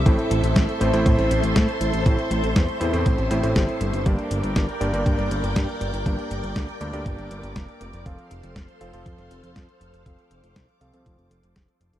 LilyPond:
<<
  \new Staff \with { instrumentName = "String machine" } { \time 4/4 \key g \dorian \tempo 4 = 120 << { c'''1~ | c'''1 | d'''1~ | d'''1 |
c'''1 | d'''1 | } \\ { <a' c'' e''>1~ | <a' c'' e''>1 | <bes' d'' g''>1~ | <bes' d'' g''>1 |
<a' c'' f''>1~ | <a' c'' f''>1 | } >> }
  \new Staff \with { instrumentName = "Electric grand piano" } { \time 4/4 \key g \dorian <a, a c' e' c''>4. <a, a c' e' c''>16 <a, a c' e' c''>2~ <a, a c' e' c''>16 | <a, a c' e' c''>4. <a, a c' e' c''>16 <a, a c' e' c''>8. <a, a c' e' c''>16 <a, a c' e' c''>4~ <a, a c' e' c''>16 | <g, bes d' g' d''>4. <g, bes d' g' d''>16 <g, bes d' g' d''>2~ <g, bes d' g' d''>16 | <g, bes d' g' d''>4. <g, bes d' g' d''>16 <g, bes d' g' d''>2~ <g, bes d' g' d''>16 |
<f c' f' a' f''>4. <f c' f' a' f''>16 <f c' f' a' f''>2~ <f c' f' a' f''>16 | <f c' f' a' f''>4. <f c' f' a' f''>16 <f c' f' a' f''>2~ <f c' f' a' f''>16 | }
  \new Staff \with { instrumentName = "Analog synth bass" } { \clef bass \time 4/4 \key g \dorian a,,16 r16 a,,16 a,,16 a,,16 r16 a,,16 a,,16 a,16 a,,16 a,,16 a,,16 a,16 r16 a,,16 a,,16 | a,,16 r16 a,,16 a,,16 e,16 r16 e,16 e,16 a,,16 a,,16 a,,16 a,,16 g,,16 r16 g,,16 g,,16 | g,,16 r16 g,,16 g,,16 g,,16 r16 g,,16 g,,16 g,16 g,,16 g,,16 g,,16 g,16 r16 g,,16 g,,16 | g,,16 r16 g,,16 g,,16 d,16 r16 d,16 d,16 g,,16 g,,16 g,,16 g,,16 f,,16 r16 f,,16 f,,16 |
f,,16 r16 f,,16 f,,16 f,,16 r16 f,,16 f,,16 f,16 f,,16 f,,16 f,,16 f,16 r16 f,,16 f,,16 | f,,16 r16 f,,16 f,,16 c,16 r16 c,16 c,16 f,,16 f,,16 f,,16 f,,16 f,,16 r16 f,,16 f,,16 | }
  \new DrumStaff \with { instrumentName = "Drums" } \drummode { \time 4/4 <hh bd>16 hh16 hh16 hh16 <hh bd sn>16 hh16 hh16 hh16 <hh bd>16 <hh sn>16 hh16 hh16 <hh bd sn>16 hh16 hh16 hh16 | <hh bd>16 hh16 hh16 hh16 <hh bd sn>16 hh16 hh16 hh16 <hh bd>16 hh16 hh16 hh16 <hh bd sn>16 hh16 hh16 hh16 | <hh bd>16 hh16 hh16 hh16 <hh bd sn>16 hh16 hh16 hh16 <hh bd>16 <hh sn>16 hh16 hh16 <hh bd sn>16 hh16 hh16 hh16 | <hh bd>16 hh16 hh16 hh16 <hh bd sn>16 hh16 hh16 hh16 <hh bd>16 hh16 hh16 hh16 <hh bd sn>16 hh16 hh16 hh16 |
<hh bd>16 hh16 hh16 hh16 <hh bd sn>16 hh16 hh16 hh16 <hh bd>16 <hh sn>16 hh16 hh16 <hh bd sn>16 hh16 hh16 hh16 | <hh bd>16 hh16 hh16 hh16 <hh bd sn>16 hh16 hh16 hh16 <hh bd>16 hh16 hh16 hh16 <hh bd sn>16 hh16 hh16 hh16 | }
>>